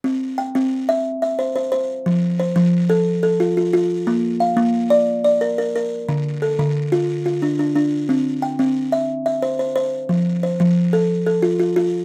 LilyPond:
\new Staff \with { instrumentName = "Kalimba" } { \time 12/8 \key c \mixolydian \tempo 4. = 119 << { r4 g''4. r4 e''4 c''4. | r4 c''4. r4 a'4 f'4. | r4 f''4. r4 d''4 bes'4. | r4 a'4. r4 f'4 d'4. |
r4 g''4. r4 e''4 c''4. | r4 c''4. r4 a'4 f'4. | } \\ { c'4 r8 c'4 e''4 r8 c''4 c''4 | f4 r8 f4 a'4 r8 f'4 f'4 | bes4 r8 bes4 d''4 r8 bes'4 bes'4 | d4 r8 d4 f'4 r8 d'4 d'4 |
c'4 r8 c'4 e''4 r8 c''4 c''4 | f4 r8 f4 a'4 r8 f'4 f'4 | } >> }